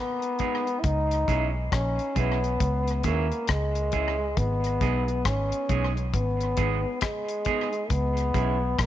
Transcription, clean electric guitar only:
0, 0, Header, 1, 3, 480
1, 0, Start_track
1, 0, Key_signature, 5, "minor"
1, 0, Tempo, 882353
1, 456, Time_signature, 4, 2, 24, 8
1, 4820, End_track
2, 0, Start_track
2, 0, Title_t, "Clean electric guitar"
2, 0, Program_c, 0, 27
2, 214, Note_on_c, 0, 56, 74
2, 218, Note_on_c, 0, 59, 80
2, 219, Note_on_c, 0, 63, 86
2, 220, Note_on_c, 0, 68, 81
2, 335, Note_off_c, 0, 56, 0
2, 336, Note_off_c, 0, 59, 0
2, 337, Note_off_c, 0, 63, 0
2, 338, Note_off_c, 0, 68, 0
2, 694, Note_on_c, 0, 56, 69
2, 696, Note_on_c, 0, 61, 80
2, 697, Note_on_c, 0, 64, 77
2, 700, Note_on_c, 0, 68, 82
2, 815, Note_off_c, 0, 56, 0
2, 816, Note_off_c, 0, 61, 0
2, 816, Note_off_c, 0, 64, 0
2, 818, Note_off_c, 0, 68, 0
2, 1170, Note_on_c, 0, 56, 69
2, 1173, Note_on_c, 0, 61, 80
2, 1176, Note_on_c, 0, 64, 78
2, 1177, Note_on_c, 0, 68, 80
2, 1293, Note_off_c, 0, 56, 0
2, 1294, Note_off_c, 0, 61, 0
2, 1296, Note_off_c, 0, 64, 0
2, 1296, Note_off_c, 0, 68, 0
2, 1655, Note_on_c, 0, 56, 74
2, 1657, Note_on_c, 0, 61, 85
2, 1657, Note_on_c, 0, 64, 79
2, 1659, Note_on_c, 0, 68, 84
2, 1776, Note_off_c, 0, 56, 0
2, 1776, Note_off_c, 0, 61, 0
2, 1777, Note_off_c, 0, 64, 0
2, 1778, Note_off_c, 0, 68, 0
2, 2135, Note_on_c, 0, 56, 73
2, 2138, Note_on_c, 0, 61, 72
2, 2139, Note_on_c, 0, 64, 82
2, 2140, Note_on_c, 0, 68, 92
2, 2256, Note_off_c, 0, 56, 0
2, 2257, Note_off_c, 0, 61, 0
2, 2258, Note_off_c, 0, 64, 0
2, 2258, Note_off_c, 0, 68, 0
2, 2618, Note_on_c, 0, 56, 76
2, 2620, Note_on_c, 0, 59, 82
2, 2621, Note_on_c, 0, 63, 83
2, 2623, Note_on_c, 0, 68, 89
2, 2737, Note_off_c, 0, 56, 0
2, 2738, Note_off_c, 0, 59, 0
2, 2739, Note_off_c, 0, 63, 0
2, 2740, Note_off_c, 0, 68, 0
2, 3095, Note_on_c, 0, 56, 71
2, 3098, Note_on_c, 0, 59, 80
2, 3100, Note_on_c, 0, 63, 82
2, 3100, Note_on_c, 0, 68, 79
2, 3216, Note_off_c, 0, 56, 0
2, 3218, Note_off_c, 0, 59, 0
2, 3219, Note_off_c, 0, 63, 0
2, 3219, Note_off_c, 0, 68, 0
2, 3575, Note_on_c, 0, 56, 74
2, 3576, Note_on_c, 0, 59, 83
2, 3580, Note_on_c, 0, 63, 88
2, 3580, Note_on_c, 0, 68, 88
2, 3697, Note_off_c, 0, 56, 0
2, 3697, Note_off_c, 0, 59, 0
2, 3699, Note_off_c, 0, 63, 0
2, 3699, Note_off_c, 0, 68, 0
2, 4057, Note_on_c, 0, 56, 67
2, 4059, Note_on_c, 0, 59, 79
2, 4061, Note_on_c, 0, 63, 81
2, 4062, Note_on_c, 0, 68, 89
2, 4178, Note_off_c, 0, 56, 0
2, 4179, Note_off_c, 0, 59, 0
2, 4180, Note_off_c, 0, 63, 0
2, 4180, Note_off_c, 0, 68, 0
2, 4537, Note_on_c, 0, 56, 74
2, 4539, Note_on_c, 0, 61, 80
2, 4540, Note_on_c, 0, 64, 82
2, 4542, Note_on_c, 0, 68, 87
2, 4658, Note_off_c, 0, 56, 0
2, 4659, Note_off_c, 0, 61, 0
2, 4660, Note_off_c, 0, 64, 0
2, 4661, Note_off_c, 0, 68, 0
2, 4820, End_track
3, 0, Start_track
3, 0, Title_t, "Muted clean electric guitar strokes"
3, 363, Note_on_c, 9, 29, 41
3, 418, Note_off_c, 9, 29, 0
3, 4206, Note_on_c, 9, 29, 50
3, 4260, Note_off_c, 9, 29, 0
3, 4820, End_track
0, 0, End_of_file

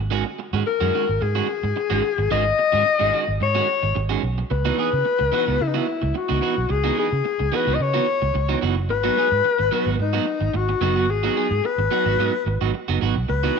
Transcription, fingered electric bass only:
0, 0, Header, 1, 2, 480
1, 0, Start_track
1, 0, Key_signature, 4, "minor"
1, 0, Tempo, 549451
1, 91, Time_signature, 4, 2, 24, 8
1, 11877, End_track
2, 0, Start_track
2, 0, Title_t, "Fingered electric bass"
2, 0, Program_c, 0, 33
2, 0, Note_on_c, 0, 32, 96
2, 194, Note_off_c, 0, 32, 0
2, 464, Note_on_c, 0, 44, 91
2, 542, Note_off_c, 0, 44, 0
2, 710, Note_on_c, 0, 42, 83
2, 785, Note_off_c, 0, 42, 0
2, 953, Note_on_c, 0, 32, 85
2, 1028, Note_off_c, 0, 32, 0
2, 1061, Note_on_c, 0, 44, 96
2, 1226, Note_off_c, 0, 44, 0
2, 1427, Note_on_c, 0, 44, 78
2, 1504, Note_off_c, 0, 44, 0
2, 1667, Note_on_c, 0, 32, 85
2, 1744, Note_off_c, 0, 32, 0
2, 1907, Note_on_c, 0, 32, 85
2, 1984, Note_off_c, 0, 32, 0
2, 2020, Note_on_c, 0, 32, 109
2, 2186, Note_off_c, 0, 32, 0
2, 2388, Note_on_c, 0, 44, 95
2, 2465, Note_off_c, 0, 44, 0
2, 2629, Note_on_c, 0, 32, 89
2, 2705, Note_off_c, 0, 32, 0
2, 2868, Note_on_c, 0, 32, 107
2, 2945, Note_off_c, 0, 32, 0
2, 2980, Note_on_c, 0, 44, 98
2, 3146, Note_off_c, 0, 44, 0
2, 3346, Note_on_c, 0, 32, 86
2, 3423, Note_off_c, 0, 32, 0
2, 3463, Note_on_c, 0, 32, 90
2, 3628, Note_off_c, 0, 32, 0
2, 3695, Note_on_c, 0, 35, 80
2, 3863, Note_off_c, 0, 35, 0
2, 3940, Note_on_c, 0, 37, 108
2, 4105, Note_off_c, 0, 37, 0
2, 4309, Note_on_c, 0, 49, 86
2, 4384, Note_off_c, 0, 49, 0
2, 4548, Note_on_c, 0, 37, 79
2, 4624, Note_off_c, 0, 37, 0
2, 4789, Note_on_c, 0, 37, 103
2, 4864, Note_off_c, 0, 37, 0
2, 4901, Note_on_c, 0, 49, 97
2, 5066, Note_off_c, 0, 49, 0
2, 5267, Note_on_c, 0, 37, 81
2, 5343, Note_off_c, 0, 37, 0
2, 5507, Note_on_c, 0, 37, 98
2, 5582, Note_off_c, 0, 37, 0
2, 5747, Note_on_c, 0, 35, 85
2, 5822, Note_off_c, 0, 35, 0
2, 5857, Note_on_c, 0, 37, 110
2, 6022, Note_off_c, 0, 37, 0
2, 6224, Note_on_c, 0, 49, 93
2, 6300, Note_off_c, 0, 49, 0
2, 6465, Note_on_c, 0, 37, 77
2, 6541, Note_off_c, 0, 37, 0
2, 6702, Note_on_c, 0, 37, 83
2, 6779, Note_off_c, 0, 37, 0
2, 6813, Note_on_c, 0, 49, 102
2, 6979, Note_off_c, 0, 49, 0
2, 7183, Note_on_c, 0, 37, 83
2, 7259, Note_off_c, 0, 37, 0
2, 7297, Note_on_c, 0, 37, 90
2, 7462, Note_off_c, 0, 37, 0
2, 7539, Note_on_c, 0, 30, 82
2, 7774, Note_off_c, 0, 30, 0
2, 7774, Note_on_c, 0, 32, 111
2, 7939, Note_off_c, 0, 32, 0
2, 8139, Note_on_c, 0, 44, 98
2, 8216, Note_off_c, 0, 44, 0
2, 8384, Note_on_c, 0, 32, 87
2, 8459, Note_off_c, 0, 32, 0
2, 8616, Note_on_c, 0, 32, 99
2, 8694, Note_off_c, 0, 32, 0
2, 8726, Note_on_c, 0, 44, 99
2, 8894, Note_off_c, 0, 44, 0
2, 9095, Note_on_c, 0, 32, 88
2, 9173, Note_off_c, 0, 32, 0
2, 9205, Note_on_c, 0, 32, 73
2, 9374, Note_off_c, 0, 32, 0
2, 9444, Note_on_c, 0, 30, 89
2, 9681, Note_off_c, 0, 30, 0
2, 9681, Note_on_c, 0, 32, 106
2, 9851, Note_off_c, 0, 32, 0
2, 10052, Note_on_c, 0, 44, 93
2, 10132, Note_off_c, 0, 44, 0
2, 10291, Note_on_c, 0, 32, 84
2, 10371, Note_off_c, 0, 32, 0
2, 10534, Note_on_c, 0, 32, 90
2, 10613, Note_off_c, 0, 32, 0
2, 10645, Note_on_c, 0, 44, 90
2, 10735, Note_off_c, 0, 44, 0
2, 10887, Note_on_c, 0, 32, 104
2, 10976, Note_off_c, 0, 32, 0
2, 11019, Note_on_c, 0, 32, 75
2, 11096, Note_off_c, 0, 32, 0
2, 11261, Note_on_c, 0, 30, 90
2, 11338, Note_off_c, 0, 30, 0
2, 11374, Note_on_c, 0, 32, 81
2, 11461, Note_off_c, 0, 32, 0
2, 11503, Note_on_c, 0, 35, 80
2, 11580, Note_off_c, 0, 35, 0
2, 11615, Note_on_c, 0, 37, 93
2, 11781, Note_off_c, 0, 37, 0
2, 11877, End_track
0, 0, End_of_file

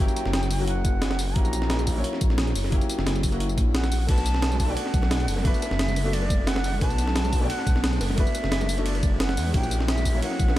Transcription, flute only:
0, 0, Header, 1, 2, 480
1, 0, Start_track
1, 0, Time_signature, 4, 2, 24, 8
1, 0, Key_signature, 2, "minor"
1, 0, Tempo, 340909
1, 14908, End_track
2, 0, Start_track
2, 0, Title_t, "Flute"
2, 0, Program_c, 0, 73
2, 0, Note_on_c, 0, 79, 108
2, 955, Note_on_c, 0, 78, 96
2, 977, Note_off_c, 0, 79, 0
2, 1914, Note_on_c, 0, 82, 99
2, 1935, Note_off_c, 0, 78, 0
2, 2875, Note_off_c, 0, 82, 0
2, 5280, Note_on_c, 0, 78, 106
2, 5725, Note_off_c, 0, 78, 0
2, 5759, Note_on_c, 0, 81, 124
2, 6617, Note_on_c, 0, 79, 85
2, 6638, Note_off_c, 0, 81, 0
2, 6715, Note_on_c, 0, 78, 110
2, 6736, Note_off_c, 0, 79, 0
2, 7679, Note_on_c, 0, 76, 111
2, 7700, Note_off_c, 0, 78, 0
2, 8635, Note_on_c, 0, 74, 101
2, 8656, Note_off_c, 0, 76, 0
2, 9114, Note_on_c, 0, 78, 108
2, 9135, Note_off_c, 0, 74, 0
2, 9582, Note_off_c, 0, 78, 0
2, 9591, Note_on_c, 0, 81, 121
2, 10555, Note_on_c, 0, 78, 111
2, 10576, Note_off_c, 0, 81, 0
2, 11140, Note_off_c, 0, 78, 0
2, 11514, Note_on_c, 0, 76, 110
2, 12478, Note_on_c, 0, 74, 95
2, 12499, Note_off_c, 0, 76, 0
2, 12956, Note_off_c, 0, 74, 0
2, 12963, Note_on_c, 0, 78, 101
2, 13406, Note_off_c, 0, 78, 0
2, 13441, Note_on_c, 0, 79, 111
2, 13885, Note_off_c, 0, 79, 0
2, 13921, Note_on_c, 0, 76, 99
2, 14365, Note_off_c, 0, 76, 0
2, 14397, Note_on_c, 0, 78, 103
2, 14908, Note_off_c, 0, 78, 0
2, 14908, End_track
0, 0, End_of_file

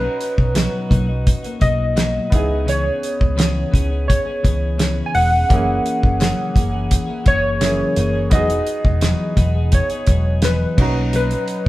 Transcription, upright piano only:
0, 0, Header, 1, 2, 480
1, 0, Start_track
1, 0, Tempo, 705219
1, 1823, Time_signature, 4, 2, 24, 8
1, 7954, End_track
2, 0, Start_track
2, 0, Title_t, "Upright piano"
2, 0, Program_c, 0, 0
2, 0, Control_c, 0, 64, 127
2, 0, Note_on_c, 0, 61, 65
2, 0, Note_on_c, 0, 63, 58
2, 0, Note_on_c, 0, 66, 64
2, 0, Note_on_c, 0, 82, 77
2, 1545, Note_off_c, 0, 61, 0
2, 1554, Note_off_c, 0, 63, 0
2, 1557, Note_off_c, 0, 66, 0
2, 1562, Note_off_c, 0, 82, 0
2, 1566, Note_on_c, 0, 59, 65
2, 1578, Note_on_c, 0, 63, 60
2, 1588, Note_on_c, 0, 64, 55
2, 1592, Control_c, 0, 64, 0
2, 1600, Note_on_c, 0, 68, 74
2, 1717, Control_c, 0, 64, 127
2, 3467, Note_off_c, 0, 59, 0
2, 3474, Note_off_c, 0, 63, 0
2, 3478, Note_off_c, 0, 64, 0
2, 3484, Note_off_c, 0, 68, 0
2, 3739, Note_on_c, 0, 58, 73
2, 3751, Control_c, 0, 64, 0
2, 3752, Note_on_c, 0, 61, 65
2, 3762, Note_on_c, 0, 64, 66
2, 3768, Note_on_c, 0, 68, 73
2, 3873, Control_c, 0, 64, 127
2, 5154, Note_off_c, 0, 58, 0
2, 5160, Note_off_c, 0, 61, 0
2, 5165, Note_off_c, 0, 64, 0
2, 5169, Note_off_c, 0, 68, 0
2, 5179, Note_on_c, 0, 58, 48
2, 5186, Note_on_c, 0, 61, 42
2, 5190, Note_on_c, 0, 64, 46
2, 5196, Note_on_c, 0, 68, 61
2, 5650, Note_on_c, 0, 59, 72
2, 5661, Note_off_c, 0, 58, 0
2, 5662, Note_on_c, 0, 63, 69
2, 5664, Note_off_c, 0, 61, 0
2, 5667, Note_off_c, 0, 64, 0
2, 5670, Note_off_c, 0, 68, 0
2, 5672, Control_c, 0, 64, 0
2, 5675, Note_on_c, 0, 66, 66
2, 5683, Note_on_c, 0, 68, 82
2, 5793, Control_c, 0, 64, 127
2, 7310, Note_off_c, 0, 59, 0
2, 7316, Note_off_c, 0, 63, 0
2, 7322, Note_off_c, 0, 66, 0
2, 7326, Note_off_c, 0, 68, 0
2, 7331, Note_on_c, 0, 61, 66
2, 7341, Note_on_c, 0, 63, 63
2, 7350, Note_on_c, 0, 66, 68
2, 7351, Control_c, 0, 64, 0
2, 7363, Note_on_c, 0, 82, 73
2, 7452, Control_c, 0, 64, 127
2, 7954, Note_off_c, 0, 61, 0
2, 7954, Note_off_c, 0, 63, 0
2, 7954, Note_off_c, 0, 66, 0
2, 7954, Note_off_c, 0, 82, 0
2, 7954, End_track
0, 0, End_of_file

